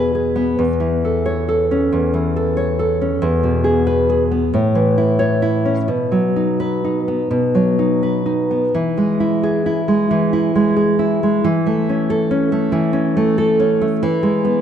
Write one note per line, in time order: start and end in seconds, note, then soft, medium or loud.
0.00 0.57 E2 soft
0.00 0.51 B2 soft
0.00 0.14 G#4 soft
0.00 0.61 B4 soft
0.15 0.61 G#4 soft
0.36 0.61 B3 soft
0.59 1.89 E2 soft
0.80 1.82 E3 soft
1.05 1.47 A4 soft
1.26 1.63 C#5 medium
1.48 2.35 A4 soft
1.71 2.69 C#4 soft
1.92 3.18 E2 soft
2.14 3.11 E3 soft
2.36 2.78 A4 soft
2.57 3.22 C#5 soft
2.79 3.22 A4 soft
3.02 3.23 C#4 soft
3.22 4.49 E2 medium
3.43 4.42 B2 soft
3.64 4.08 G#4 soft
3.87 4.23 B4 medium
4.10 4.53 G#4 soft
4.32 4.53 B3 soft
4.54 5.85 A2 medium
4.75 5.77 E3 soft
4.98 5.41 E4 soft
5.19 5.56 C#5 medium
5.42 5.89 E4 soft
5.65 5.89 C#4 soft
5.88 7.28 B2 medium
6.12 7.20 F#3 soft
6.36 6.83 D#4 soft
6.60 6.99 B4 medium
6.84 7.78 D#4 soft
7.08 8.14 B3 soft
7.31 8.70 B2 soft
7.55 8.63 F#3 soft
7.79 8.25 D#4 soft
8.03 8.75 B4 soft
8.26 8.75 D#4 soft
8.51 8.75 B3 soft
8.75 10.08 E3 soft
8.97 9.87 G#3 soft
9.20 9.65 E4 soft
9.43 9.81 G#4 medium
9.66 10.32 E4 soft
9.88 10.54 G#3 soft
10.11 11.42 E3 soft
10.33 10.98 E4 soft
10.55 11.22 G#3 soft
10.76 11.46 G#4 soft
10.99 11.46 E4 soft
11.23 11.46 G#3 soft
11.44 12.70 E3 medium
11.66 12.51 A3 soft
11.89 12.30 C#4 soft
12.10 12.44 A4 medium
12.31 12.92 C#4 soft
12.52 13.15 A3 soft
12.72 14.00 E3 medium
12.93 13.58 C#4 soft
13.17 13.80 A3 medium
13.38 14.04 A4 medium
13.60 14.04 C#4 medium
13.81 14.04 A3 medium
14.03 14.61 E3 medium
14.23 14.61 G#3 medium
14.45 14.61 B3 medium